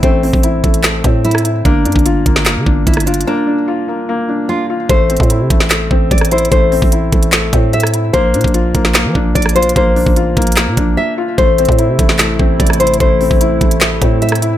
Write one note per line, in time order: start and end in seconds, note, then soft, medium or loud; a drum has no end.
0.00 0.32 A1 loud
0.00 0.03 A3 medium
0.00 0.62 A3 medium
0.00 0.23 C4 medium
0.00 1.21 C4 loud
0.00 0.43 E4 medium
0.00 kick loud
0.00 closed hi-hat medium
0.23 1.03 C4 medium
0.23 open hi-hat medium
0.33 0.63 A1 loud
0.33 kick loud
0.43 1.43 E4 medium
0.43 closed hi-hat medium
0.63 1.03 A1 loud
0.63 0.82 A3 medium
0.63 kick medium
0.63 closed hi-hat medium
0.74 closed hi-hat medium
0.83 1.65 A3 medium
0.83 snare loud
0.83 clap loud
0.83 closed hi-hat medium
1.04 1.63 A2 loud
1.04 1.65 C4 medium
1.04 kick loud
1.04 closed hi-hat medium
1.25 1.41 E4 medium
1.25 closed hi-hat medium
1.31 cross-stick medium
1.31 closed hi-hat medium
1.38 closed hi-hat medium
1.45 1.65 E4 medium
1.45 closed hi-hat medium
1.65 1.87 G1 loud
1.65 2.25 A#3 medium
1.65 2.83 D4 loud
1.65 kick loud
1.65 closed hi-hat medium
1.85 1.95 G2 loud
1.85 2.65 D4 medium
1.85 closed hi-hat medium
1.92 2.25 G1 loud
1.92 kick loud
1.92 closed hi-hat medium
1.99 closed hi-hat soft
2.06 3.06 F4 medium
2.06 closed hi-hat medium
2.26 2.58 G1 loud
2.26 2.45 A#3 medium
2.26 kick loud
2.26 closed hi-hat medium
2.36 snare medium
2.36 closed hi-hat soft
2.46 3.26 A#3 medium
2.46 snare loud
2.46 clap loud
2.46 closed hi-hat medium
2.56 2.66 D3 loud
2.66 2.86 G1 loud
2.66 3.46 D4 medium
2.66 kick loud
2.87 3.26 G1 loud
2.87 3.03 E4 medium
2.87 kick loud
2.87 closed hi-hat medium
2.94 cross-stick medium
2.94 closed hi-hat medium
3.00 closed hi-hat medium
3.06 3.23 D4 medium
3.06 3.66 F4 medium
3.06 closed hi-hat medium
3.14 closed hi-hat medium
3.21 closed hi-hat medium
3.27 3.87 A#3 medium
3.27 4.45 D4 loud
3.47 4.27 D4 medium
3.68 4.68 F4 medium
3.88 4.07 A#3 medium
4.09 4.90 A#3 medium
4.29 4.90 D4 medium
4.49 4.65 F4 medium
4.70 4.90 F4 medium
4.89 5.19 A1 loud
4.89 5.49 A3 loud
4.89 6.07 C5 loud
4.89 kick loud
4.89 closed hi-hat medium
5.10 5.90 C4 medium
5.10 closed hi-hat medium
5.17 5.42 A2 loud
5.17 kick loud
5.17 closed hi-hat medium
5.23 closed hi-hat soft
5.30 6.30 E4 medium
5.30 closed hi-hat medium
5.40 5.50 C3 loud
5.50 5.89 A1 loud
5.50 5.69 A3 medium
5.50 kick loud
5.50 closed hi-hat medium
5.60 snare medium
5.60 closed hi-hat soft
5.70 6.50 A3 medium
5.70 snare loud
5.70 clap loud
5.70 closed hi-hat medium
5.91 6.10 A1 loud
5.91 6.70 C4 medium
5.91 kick loud
6.11 6.50 A1 loud
6.11 6.28 D5 medium
6.11 kick loud
6.11 closed hi-hat medium
6.18 cross-stick medium
6.18 closed hi-hat medium
6.25 closed hi-hat medium
6.31 6.91 E4 medium
6.31 6.48 C5 medium
6.31 closed hi-hat medium
6.38 closed hi-hat medium
6.45 closed hi-hat medium
6.51 6.81 A1 loud
6.51 7.11 A3 medium
6.51 7.69 C5 loud
6.51 kick loud
6.51 closed hi-hat medium
6.72 7.51 C4 medium
6.72 open hi-hat medium
6.82 7.11 A1 loud
6.82 kick loud
6.92 7.92 E4 medium
6.92 closed hi-hat medium
7.12 7.51 A1 loud
7.12 7.31 A3 medium
7.12 kick loud
7.12 closed hi-hat medium
7.23 closed hi-hat medium
7.32 8.14 A3 loud
7.32 snare loud
7.32 clap loud
7.32 closed hi-hat medium
7.53 8.11 A2 loud
7.53 8.14 C4 medium
7.53 kick loud
7.53 closed hi-hat medium
7.73 7.90 E5 medium
7.73 closed hi-hat medium
7.80 cross-stick medium
7.80 closed hi-hat medium
7.87 closed hi-hat medium
7.94 8.14 E4 medium
7.94 closed hi-hat medium
8.13 8.36 A#1 loud
8.13 8.73 A#3 loud
8.13 9.31 C5 loud
8.13 kick loud
8.13 closed hi-hat medium
8.34 8.44 A#2 loud
8.34 9.14 D4 medium
8.34 closed hi-hat medium
8.41 8.73 A#1 loud
8.41 kick loud
8.41 closed hi-hat medium
8.48 closed hi-hat soft
8.54 9.55 F4 medium
8.54 closed hi-hat medium
8.74 9.07 A#1 loud
8.74 8.94 A#3 medium
8.74 kick loud
8.74 closed hi-hat medium
8.85 snare medium
8.85 closed hi-hat soft
8.94 9.74 A#3 medium
8.94 snare loud
8.94 clap loud
8.94 closed hi-hat medium
9.05 9.15 F3 loud
9.15 9.35 A#1 loud
9.15 9.94 D4 medium
9.15 kick loud
9.35 9.74 A#1 loud
9.35 9.51 D5 medium
9.35 kick loud
9.35 closed hi-hat medium
9.42 cross-stick medium
9.42 closed hi-hat medium
9.49 closed hi-hat medium
9.55 10.15 F4 medium
9.55 9.72 C5 medium
9.55 closed hi-hat medium
9.62 closed hi-hat medium
9.69 closed hi-hat medium
9.76 10.05 A#1 loud
9.76 10.35 A#3 medium
9.76 10.94 C5 medium
9.76 kick loud
9.76 closed hi-hat medium
9.96 10.75 D4 medium
9.96 open hi-hat medium
10.06 10.36 A1 loud
10.06 kick loud
10.16 11.16 F4 medium
10.16 closed hi-hat medium
10.37 10.69 A#1 loud
10.37 10.56 A#3 medium
10.37 kick loud
10.37 closed hi-hat medium
10.42 closed hi-hat medium
10.47 closed hi-hat medium
10.52 closed hi-hat medium
10.56 11.38 A#3 medium
10.56 cross-stick medium
10.56 snare loud
10.56 clap loud
10.56 closed hi-hat medium
10.67 10.77 A#2 loud
10.77 10.97 A#1 loud
10.77 11.38 D4 medium
10.77 kick loud
10.77 closed hi-hat medium
10.97 11.14 E5 medium
11.18 11.38 F4 medium
11.38 11.67 A1 loud
11.38 14.58 C3 medium
11.38 14.58 A3 medium
11.38 11.98 A3 loud
11.38 14.58 E4 medium
11.38 12.56 C5 loud
11.38 kick loud
11.38 closed hi-hat medium
11.58 12.38 C4 medium
11.58 closed hi-hat medium
11.65 11.90 A2 loud
11.65 kick loud
11.65 closed hi-hat medium
11.72 closed hi-hat soft
11.78 12.79 E4 medium
11.78 closed hi-hat medium
11.89 11.98 C3 loud
11.99 12.38 A1 loud
11.99 12.18 A3 medium
11.99 kick loud
11.99 closed hi-hat medium
12.09 snare medium
12.09 closed hi-hat soft
12.19 12.99 A3 medium
12.19 snare loud
12.19 clap loud
12.19 closed hi-hat medium
12.39 12.59 A1 loud
12.39 13.19 C4 medium
12.39 kick loud
12.60 12.99 A1 loud
12.60 12.76 D5 medium
12.60 kick loud
12.60 closed hi-hat medium
12.67 cross-stick medium
12.67 closed hi-hat medium
12.73 closed hi-hat medium
12.80 13.39 E4 medium
12.80 12.96 C5 medium
12.80 closed hi-hat medium
12.87 closed hi-hat medium
12.94 closed hi-hat medium
13.00 13.30 A1 loud
13.00 13.59 A3 medium
13.00 14.18 C5 loud
13.00 kick loud
13.00 closed hi-hat medium
13.21 14.01 C4 medium
13.21 open hi-hat medium
13.31 13.60 A1 loud
13.31 kick loud
13.41 14.40 E4 loud
13.41 closed hi-hat medium
13.61 14.00 A1 loud
13.61 13.80 A3 medium
13.61 kick loud
13.61 closed hi-hat medium
13.71 closed hi-hat medium
13.81 14.58 A3 medium
13.81 snare loud
13.81 clap loud
13.81 closed hi-hat medium
14.02 14.58 A2 loud
14.02 14.58 C4 medium
14.02 kick loud
14.02 closed hi-hat medium
14.22 14.38 E5 medium
14.22 closed hi-hat medium
14.29 cross-stick medium
14.29 closed hi-hat medium
14.35 closed hi-hat medium
14.42 14.58 E4 medium
14.42 closed hi-hat medium